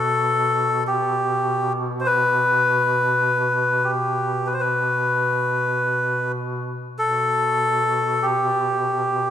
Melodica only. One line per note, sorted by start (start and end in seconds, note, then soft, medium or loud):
0.00 0.84 A4 medium
0.87 1.73 G4 medium
2.00 2.07 C5 medium
2.06 3.92 B4 loud
3.84 4.48 G4 medium
4.46 4.54 B4 medium
4.53 4.61 C5 medium
4.60 6.32 B4 medium
6.99 8.26 A4 medium
8.22 9.30 G4 medium